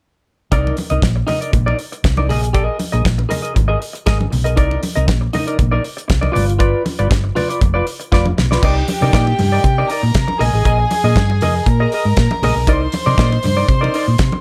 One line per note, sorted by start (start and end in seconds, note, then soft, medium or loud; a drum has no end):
0.52 0.70 C2 medium
0.52 0.75 D#4 medium
0.52 0.75 A#4 loud
0.52 0.76 D5 medium
0.52 kick loud
0.52 closed hi-hat medium
0.67 muted conga soft
0.77 muted clean electric guitar stroke soft
0.77 open hi-hat medium
0.77 high conga medium
0.90 1.00 C2 medium
0.90 1.01 D#4 soft
0.90 1.02 A#4 soft
0.90 1.03 D#5 medium
0.90 closed hi-hat soft
1.02 1.21 A#1 medium
1.02 muted clean electric guitar stroke soft
1.02 kick loud
1.02 snare loud
1.02 closed hi-hat medium
1.02 muted conga soft
1.02 high conga medium
1.16 muted clean electric guitar stroke soft
1.27 1.41 D#4 medium
1.27 1.40 A#4 medium
1.27 1.41 D#5 medium
1.27 open hi-hat medium
1.27 high conga medium
1.27 low conga medium
1.41 1.51 D#4 soft
1.41 1.52 A#4 soft
1.41 1.52 D5 medium
1.41 closed hi-hat soft
1.52 1.72 A#1 medium
1.52 muted clean electric guitar stroke soft
1.52 kick loud
1.52 closed hi-hat soft
1.52 muted conga soft
1.52 low conga medium
1.66 1.77 D#4 medium
1.66 1.78 A#4 medium
1.66 1.78 D5 medium
1.66 muted conga soft
1.78 muted clean electric guitar stroke soft
1.78 open hi-hat medium
1.92 muted clean electric guitar stroke soft
1.92 closed hi-hat soft
2.04 2.30 C2 medium
2.04 muted clean electric guitar stroke soft
2.04 kick loud
2.04 snare medium
2.04 closed hi-hat medium
2.04 muted conga soft
2.17 2.29 D#4 soft
2.17 2.29 A#4 soft
2.17 2.30 D5 medium
2.17 muted conga soft
2.17 high conga medium
2.29 2.67 A#1 loud
2.29 2.48 G#4 medium
2.29 2.42 A#4 medium
2.29 2.42 D#5 medium
2.29 open hi-hat medium
2.29 low conga medium
2.43 muted clean electric guitar stroke soft
2.43 closed hi-hat soft
2.53 2.77 G#4 medium
2.53 2.78 A#4 medium
2.53 2.78 D#5 loud
2.53 kick loud
2.53 closed hi-hat soft
2.79 muted clean electric guitar stroke soft
2.79 open hi-hat medium
2.79 high conga medium
2.92 3.02 A#1 medium
2.92 3.03 G#4 medium
2.92 3.03 A#4 medium
2.92 3.04 D#5 medium
2.92 closed hi-hat soft
3.04 muted clean electric guitar stroke soft
3.04 kick loud
3.04 snare loud
3.04 closed hi-hat medium
3.04 muted conga soft
3.04 high conga medium
3.18 muted clean electric guitar stroke soft
3.18 muted conga soft
3.29 3.43 G#4 medium
3.29 3.42 A#4 medium
3.29 3.41 D#5 medium
3.29 open hi-hat medium
3.29 high conga medium
3.29 low conga medium
3.42 3.53 G#4 soft
3.42 3.54 A#4 soft
3.42 3.54 D#5 medium
3.42 closed hi-hat medium
3.54 3.75 G#1 medium
3.54 muted clean electric guitar stroke soft
3.54 kick loud
3.54 closed hi-hat medium
3.54 muted conga soft
3.54 low conga medium
3.68 3.79 G#4 medium
3.68 3.79 A#4 medium
3.68 3.79 D#5 medium
3.80 muted clean electric guitar stroke soft
3.80 open hi-hat soft
3.93 muted clean electric guitar stroke soft
3.93 closed hi-hat soft
4.06 4.26 G#1 medium
4.06 4.25 G#4 medium
4.06 4.19 A#4 medium
4.06 4.18 D#5 medium
4.06 kick loud
4.06 snare medium
4.06 closed hi-hat medium
4.19 muted clean electric guitar stroke soft
4.19 muted conga soft
4.19 high conga medium
4.30 4.58 B1 medium
4.30 muted clean electric guitar stroke soft
4.30 open hi-hat medium
4.30 low conga medium
4.44 4.56 G#4 soft
4.44 4.56 A#4 medium
4.44 4.57 D#5 medium
4.44 closed hi-hat medium
4.56 4.76 C2 loud
4.56 4.80 D#4 medium
4.56 4.81 A#4 medium
4.56 4.81 D5 medium
4.56 kick loud
4.56 closed hi-hat medium
4.71 muted conga soft
4.82 muted clean electric guitar stroke soft
4.82 open hi-hat medium
4.82 high conga medium
4.95 5.08 C2 loud
4.95 5.06 D#4 soft
4.95 5.06 A#4 medium
4.95 5.07 D#5 medium
4.95 closed hi-hat soft
5.07 5.27 A#1 medium
5.07 muted clean electric guitar stroke soft
5.07 kick loud
5.07 snare loud
5.07 closed hi-hat medium
5.07 muted conga soft
5.07 high conga medium
5.21 muted clean electric guitar stroke soft
5.33 5.47 D#4 medium
5.33 5.46 A#4 medium
5.33 5.47 D#5 medium
5.33 open hi-hat medium
5.33 high conga medium
5.33 low conga medium
5.47 5.57 D#4 soft
5.47 5.58 A#4 medium
5.47 5.58 D5 medium
5.47 closed hi-hat medium
5.58 5.78 A#1 medium
5.58 muted clean electric guitar stroke soft
5.58 kick loud
5.58 closed hi-hat medium
5.58 muted conga soft
5.58 low conga medium
5.71 5.83 D#4 medium
5.71 5.83 A#4 medium
5.71 5.84 D5 medium
5.84 muted clean electric guitar stroke soft
5.84 open hi-hat medium
5.97 muted clean electric guitar stroke medium
5.97 closed hi-hat soft
6.08 6.28 C2 medium
6.08 muted clean electric guitar stroke soft
6.08 kick loud
6.08 snare loud
6.08 closed hi-hat medium
6.08 muted conga soft
6.21 6.31 D#4 soft
6.21 6.33 A#4 soft
6.21 6.32 D5 medium
6.21 muted conga soft
6.21 high conga medium
6.32 6.73 G1 loud
6.32 6.52 F4 medium
6.32 6.47 B4 medium
6.32 6.45 D5 medium
6.32 low conga medium
6.36 open hi-hat medium
6.46 muted clean electric guitar stroke soft
6.46 closed hi-hat medium
6.59 6.83 F4 medium
6.59 6.83 B4 medium
6.59 6.84 D5 medium
6.59 kick loud
6.59 closed hi-hat medium
6.59 muted conga soft
6.84 muted clean electric guitar stroke soft
6.84 open hi-hat medium
6.84 high conga medium
6.99 7.08 G1 loud
6.99 7.08 F4 soft
6.99 7.08 B4 medium
6.99 7.09 D5 medium
6.99 closed hi-hat soft
7.09 7.30 G1 medium
7.09 muted clean electric guitar stroke soft
7.09 kick loud
7.09 snare loud
7.09 closed hi-hat medium
7.09 high conga medium
7.24 muted clean electric guitar stroke soft
7.35 7.50 F4 medium
7.35 7.49 B4 medium
7.35 7.48 D5 medium
7.35 open hi-hat medium
7.35 high conga medium
7.35 low conga medium
7.49 7.60 F4 soft
7.49 7.60 B4 soft
7.49 7.61 D5 medium
7.49 closed hi-hat soft
7.61 7.80 F1 medium
7.61 muted clean electric guitar stroke soft
7.61 kick loud
7.61 closed hi-hat medium
7.61 low conga medium
7.74 7.85 F4 medium
7.74 7.86 B4 medium
7.74 7.86 D5 medium
7.87 muted clean electric guitar stroke soft
7.87 open hi-hat medium
8.00 muted clean electric guitar stroke soft
8.00 closed hi-hat soft
8.12 8.31 F1 loud
8.12 8.31 F4 medium
8.12 8.26 B4 medium
8.12 8.25 D5 medium
8.12 kick loud
8.12 snare medium
8.12 muted conga soft
8.26 muted clean electric guitar stroke soft
8.26 muted conga soft
8.26 high conga medium
8.37 8.56 B1 medium
8.37 muted clean electric guitar stroke soft
8.37 snare medium
8.37 low conga medium
8.51 8.63 F4 medium
8.51 8.63 B4 medium
8.51 8.63 D5 medium
8.51 snare medium
8.62 8.81 C2 medium
8.62 8.82 D#4 medium
8.62 9.86 G4 medium
8.62 8.76 A#4 medium
8.62 8.75 D5 medium
8.62 9.87 G5 medium
8.62 kick loud
8.62 crash medium
8.77 muted clean electric guitar stroke soft
8.88 muted clean electric guitar stroke soft
8.88 open hi-hat medium
8.88 high conga medium
9.01 9.11 C3 medium
9.01 9.12 D#4 soft
9.01 9.12 A#4 medium
9.01 9.13 D5 medium
9.01 high conga medium
9.13 9.32 A#2 medium
9.13 9.32 D#4 medium
9.13 9.27 A#4 medium
9.13 9.26 D5 medium
9.13 kick loud
9.13 snare loud
9.13 closed hi-hat medium
9.13 high conga medium
9.27 muted clean electric guitar stroke soft
9.27 muted conga soft
9.39 9.57 G2 medium
9.39 muted clean electric guitar stroke soft
9.39 open hi-hat medium
9.39 high conga medium
9.39 low conga medium
9.52 9.63 D#4 soft
9.52 9.64 A#4 medium
9.52 9.64 D5 medium
9.64 9.83 C3 medium
9.64 muted clean electric guitar stroke soft
9.64 kick loud
9.64 closed hi-hat medium
9.64 muted conga soft
9.78 9.88 D#4 medium
9.78 9.89 A#4 medium
9.78 9.90 D5 medium
9.89 10.04 D#4 medium
9.89 10.39 A#4 medium
9.89 10.03 A#4 medium
9.89 10.02 D5 medium
9.89 10.39 A#5 medium
9.89 open hi-hat medium
10.03 10.12 A#2 medium
10.03 muted clean electric guitar stroke soft
10.14 10.25 C3 medium
10.14 muted clean electric guitar stroke soft
10.14 kick loud
10.14 snare loud
10.14 closed hi-hat medium
10.14 muted conga soft
10.28 muted clean electric guitar stroke soft
10.28 muted conga soft
10.28 high conga medium
10.39 10.50 A#1 loud
10.39 10.54 G#4 medium
10.39 11.64 G#4 medium
10.39 10.53 A#4 medium
10.39 10.52 D#5 loud
10.39 11.64 G#5 medium
10.39 open hi-hat medium
10.39 low conga medium
10.53 10.62 A1 medium
10.53 10.64 G#4 medium
10.53 10.64 A#4 medium
10.53 10.65 D#5 medium
10.65 10.84 A#1 loud
10.65 10.84 G#4 medium
10.65 10.80 A#4 medium
10.65 10.78 D#5 loud
10.65 kick loud
10.65 closed hi-hat medium
10.65 muted conga soft
10.79 muted clean electric guitar stroke soft
10.90 muted clean electric guitar stroke soft
10.90 open hi-hat medium
10.90 high conga medium
11.04 11.13 A#2 medium
11.04 11.18 G#4 soft
11.04 11.18 A#4 medium
11.04 11.18 D#5 medium
11.04 high conga medium
11.16 11.41 G2 loud
11.16 kick loud
11.16 snare loud
11.16 closed hi-hat medium
11.16 muted conga soft
11.16 high conga medium
11.30 muted clean electric guitar stroke soft
11.30 muted conga soft
11.41 11.60 F2 medium
11.41 11.60 G#4 medium
11.41 11.56 A#4 medium
11.41 11.55 D#5 medium
11.41 open hi-hat medium
11.41 high conga medium
11.41 low conga medium
11.56 muted clean electric guitar stroke soft
11.66 11.85 A#2 loud
11.66 12.66 A#4 medium
11.66 12.66 A#5 medium
11.66 muted clean electric guitar stroke soft
11.66 kick loud
11.66 closed hi-hat medium
11.80 11.92 G#4 medium
11.80 11.93 A#4 medium
11.80 11.93 D#5 medium
11.92 12.07 G#4 medium
11.92 12.06 A#4 medium
11.92 12.05 D#5 medium
11.92 open hi-hat medium
12.05 12.14 G#2 medium
12.05 muted clean electric guitar stroke soft
12.17 12.27 A#2 medium
12.17 kick loud
12.17 snare loud
12.17 closed hi-hat medium
12.17 muted conga soft
12.31 muted clean electric guitar stroke medium
12.31 muted conga soft
12.31 high conga medium
12.42 12.52 A#1 loud
12.42 12.61 G#4 medium
12.42 12.56 A#4 medium
12.42 12.55 D#5 medium
12.42 open hi-hat medium
12.42 low conga medium
12.56 12.67 B1 medium
12.56 muted clean electric guitar stroke medium
12.67 12.86 C2 loud
12.67 12.86 D#4 medium
12.67 12.82 A#4 medium
12.67 14.41 C5 medium
12.67 12.81 D5 loud
12.67 14.41 C6 medium
12.67 kick loud
12.67 closed hi-hat medium
12.67 muted conga soft
12.82 muted clean electric guitar stroke soft
12.92 muted clean electric guitar stroke medium
12.92 open hi-hat medium
12.92 high conga medium
13.06 13.15 C3 loud
13.06 13.17 D#4 medium
13.06 13.18 A#4 medium
13.06 13.18 D5 medium
13.06 high conga medium
13.18 13.37 A#2 loud
13.18 13.37 D#4 medium
13.18 13.31 A#4 medium
13.18 13.31 D5 medium
13.18 kick loud
13.18 snare loud
13.18 closed hi-hat medium
13.18 muted conga soft
13.18 high conga medium
13.32 muted clean electric guitar stroke soft
13.32 muted conga soft
13.43 13.62 G2 medium
13.43 muted clean electric guitar stroke soft
13.43 open hi-hat medium
13.43 high conga medium
13.43 low conga medium
13.57 13.67 D#4 soft
13.57 13.68 A#4 medium
13.57 13.67 D5 medium
13.68 13.87 C3 loud
13.68 muted clean electric guitar stroke soft
13.68 kick loud
13.68 closed hi-hat medium
13.68 muted conga soft
13.81 13.93 D#4 medium
13.81 13.93 A#4 medium
13.81 13.94 D5 medium
13.81 muted conga soft
13.94 14.09 D#4 medium
13.94 14.07 A#4 medium
13.94 14.06 D5 medium
13.94 open hi-hat medium
14.07 14.16 A#2 medium
14.07 muted clean electric guitar stroke soft
14.18 14.29 C3 loud
14.18 muted clean electric guitar stroke soft
14.18 kick loud
14.18 snare loud
14.18 closed hi-hat medium
14.32 muted clean electric guitar stroke soft
14.32 muted conga soft
14.32 high conga medium